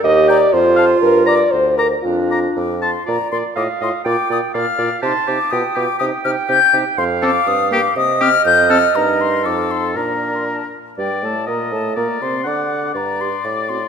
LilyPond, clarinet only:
\new Staff \with { instrumentName = "Clarinet" } { \time 2/4 \key bes \major \tempo 4 = 122 g'4 f'4~ | f'4. r8 | d'4. r8 | d''4 f''4 |
g''4 f''4 | a''4 g''4 | g''2 | f''2 |
ees''2~ | ees''4. r8 | d''4. r8 | \key g \minor g'8 a'8 bes'8 a'8 |
bes'8 c''8 d''4 | r8 g'8 r8 fis'8 | }